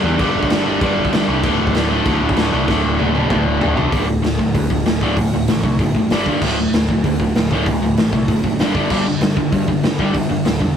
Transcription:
0.04 E2 G2 D3 G3
0.19 G1 G2 D3 G3, kick, crash
0.36 G1
0.43 kick
0.50 G1 G2 D3 G3, snare, crash
0.65 G2 D3 G3
0.81 G2 D3 G3, kick, crash
0.98 G1
1.05 kick
1.12 G1 G2 D3 G3, snare, crash
1.28 C2 G2 D3 G3
1.43 D1 D2 A2 D3, kick, crash
1.60 D1
1.67 kick
1.75 D1 D2 A2 D3, snare, crash
1.90 D2 A2 D3
2.06 D2 A2 D3, kick, crash
2.21 D1
2.29 kick
2.37 D1 D2 A2 D3, snare, crash
2.52 C2 D2 A2 D3
2.68 D1 D2 A2 D3, kick, snare
2.84 D1
2.98 D1 D2 A2 D3, high tom
3.14 D2 A2 D3, high tom
3.29 D2 A2 D3, kick, mid tom
3.46 D1
3.60 D1 D2 A2 D3, floor tom
3.76 C2 D2 A2 D3, floor tom
3.90 D1 D2 A2 D3, kick, open hi-hat
4.06 D2 A2
4.22 D1 D2 A2, snare, open hi-hat
4.38 D1 D2 A2, kick
4.54 D2 A2, kick, open hi-hat
4.70 D1 D2 A2, kick
4.86 D1 D2 A2, snare, open hi-hat
5.01 D1 D2 A2 D3, kick
5.17 D1 D2 A2, kick, open hi-hat
5.33 D1 D2 A2
5.48 A1 D2 A2, snare, open hi-hat
5.64 C2 D2 A2, kick
5.79 G1 D2 A2, kick, open hi-hat
5.95 D2 A2, kick
6.10 G1 G2 D3 G3, snare, open hi-hat
6.26 G1 G2 D3 G3, kick
6.42 D1 D2 A2 D3, kick, crash
6.59 D2 A2
6.73 D1 D2 A2, snare, open hi-hat
6.89 D1 D2 A2, kick
7.04 D2 A2, kick, open hi-hat
7.20 D1 D2 A2, kick
7.35 D1 D2 A2, snare, open hi-hat
7.51 D1 D2 A2 D3, kick
7.66 D1 D2 A2, kick, open hi-hat
7.82 D1 D2 A2
7.97 A1 D2 A2, snare, open hi-hat
8.13 C2 D2 A2, kick
8.28 G1 D2 A2, kick, open hi-hat
8.44 D2 A2, kick
8.59 G1 G2 D3 G3, snare, open hi-hat
8.75 G1 G2 D3 G3, kick
8.90 G1 G2 D3 G3, kick, crash
9.07 G2 D3
9.21 G1 G2 D3, snare, open hi-hat
9.37 G1 G2 D3, kick
9.52 G2 D3, kick, open hi-hat
9.67 G1 G2 D3, kick
9.83 G1 G2 D3, snare, open hi-hat
9.99 G1 G2 D3 G3, kick
10.14 G1 G2 D3, kick, open hi-hat
10.29 G1 G2 D3
10.45 D1 G2 D3, snare, open hi-hat
10.60 E1 G2 D3, kick

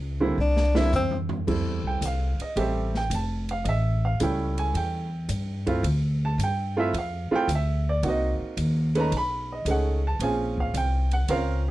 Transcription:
Already playing: C#2
0.20 D3 G3 A#3 C4 E4
0.38 C2 D4
0.57 snare
0.74 D3 G3 A#3 C4 E4, snare
0.92 E2 C4, floor tom, hi-hat pedal
1.11 floor tom
1.29 floor tom
1.47 F2 G3 A3 C4 E4, kick, crash
1.65 E2
1.83 C2
1.87 G5
2.01 C2, hi-hat pedal, ride
2.06 F5
2.39 D#5, muted upright bass stroke, ride
2.56 A1 G3 A3 C4 G4 E5, ride
2.95 G5, snare
3.10 F1, hi-hat pedal, ride
3.15 A5
3.49 F5, ride
3.64 A1 D#5, ride
3.69 E5
4.05 F5
4.20 C#2 G3 A3 C#4 E4 G5, hi-hat pedal, ride
4.58 G#5, ride
4.74 E2 G5, ride
5.29 G2, hi-hat pedal, ride
5.67 A3 C4 E4 F4, kick, ride
5.83 D2, ride
6.25 A5
6.38 G2, hi-hat pedal, ride
6.44 G5
6.77 A3 C4 E4 F4 E5
6.93 F2, ride
6.98 F5
7.31 A3 C4 E4 F4, muted upright bass stroke
7.36 G5
7.48 D2, hi-hat pedal, ride
7.55 E5
7.89 D5
8.03 C2 A#3 C4 D#4 F#4, ride
8.09 D#5
8.40 muted upright bass stroke
8.57 D#2, hi-hat pedal, ride
8.95 A3 C#4 D#4 B4, ride
9.00 A#5
9.12 B1, ride
9.17 B5
9.52 D#5
9.65 C#2 A3 C#4 D#4 G#4, hi-hat pedal, ride
9.71 F#5
10.07 A5
10.19 A#1 C4 C#4 F4 G#4, ride
10.23 G#5
10.58 F5, kick
10.74 C2 G5, hi-hat pedal, ride
11.11 F#5, ride
11.28 C#2 C4 C#4 F4 A#4 F5, ride

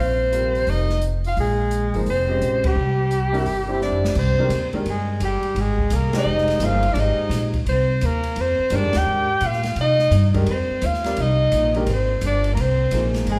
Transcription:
Already playing: A#1
0.00 C4 C5
0.32 C3 G3 F4 A#4 C5, closed hi-hat
0.55 open hi-hat
0.67 F1 D#4 D#5, open hi-hat
0.89 snare
1.02 closed hi-hat
1.24 F4 F5, open hi-hat
1.37 A#1 G#3 G#4, open hi-hat
1.71 closed hi-hat
1.94 G#1 F3 A#3 D#4 G#4 C5, open hi-hat
2.06 F1 C4, open hi-hat
2.10 C5
2.29 C#3 G#3 G4 C5 D#5
2.41 A#1, closed hi-hat
2.64 G3 G4, kick, ride
2.76 C2
3.11 closed hi-hat
3.32 G3 C4 D4 E4 A#4, open hi-hat
3.46 G1, open hi-hat
3.68 G3 C4 D4 E4 C5
3.81 D4 D5, snare
3.92 floor tom
4.05 snare
4.15 C2 C4 C5, kick, crash
4.39 D#3 G#3 D4 G4 A#4
4.49 D#2, hi-hat pedal, ride
4.73 D#3 G#3 D4 G4 A#4, muted upright bass stroke, ride
4.86 G2 G#3, ride
4.90 G#4
5.20 G1 G3, hi-hat pedal, ride
5.25 G4
5.42 muted upright bass stroke, ride
5.55 G#1, ride
5.60 G#3 G#4
5.78 kick
5.90 C2 A#3, hi-hat pedal, ride
5.96 A#4
6.13 G#3 D#4 G4 C5 D#5, snare, ride
6.19 D#5
6.25 F1
6.38 snare
6.48 snare, ride
6.59 G1 F3 A#3 D#4 G#4 C5, hi-hat pedal, ride
6.64 F4 F5
6.83 ride
6.93 G#1 D4 D5, ride
6.97 G#3 D#4 G4 C5 D#5
7.17 muted upright bass stroke
7.29 A#1, snare, hi-hat pedal, ride
7.54 kick, ride
7.66 C2 C5, ride
7.71 C4
8.01 D#2 A#3, hi-hat pedal, ride
8.05 A#4
8.23 ride
8.36 F2, ride
8.41 C4 C5
8.58 muted upright bass stroke
8.70 G2 D#3 G#3 D4 G4 A#4, hi-hat pedal, ride
8.75 D4 D5
8.83 F2
8.93 D#2, snare, ride
8.98 G4 G5
9.06 G#2
9.41 A#2 F4, hi-hat pedal, ride
9.47 F5
9.53 snare
9.63 snare, ride
9.76 C3, ride
9.81 D#4 D#5
9.99 snare
10.11 G2, hi-hat pedal, ride
10.34 D#3 G#3 D4 G4 A#4, kick, ride
10.46 F2 C4, ride
10.51 C5
10.70 muted upright bass stroke
10.81 D#2 F4, hi-hat pedal, ride
10.86 F5
10.94 snare
11.04 G3 C4 F4 A#4 D5, snare, ride
11.17 C2 D#4, ride
11.22 D#5
11.52 A#1, hi-hat pedal, ride
11.74 D#3 G#3 D4 G4 A#4, ride
11.86 G#1 C4, ride
11.93 C5
12.21 G1, hi-hat pedal, ride
12.25 D4 D5
12.44 ride
12.53 C2 A#3 A#4
12.57 C4 C5, ride
12.91 A#1 F3 A#3 D#4 G#4 C5, hi-hat pedal, ride
13.14 snare, ride
13.26 G#1 G#3, ride
13.32 G#4

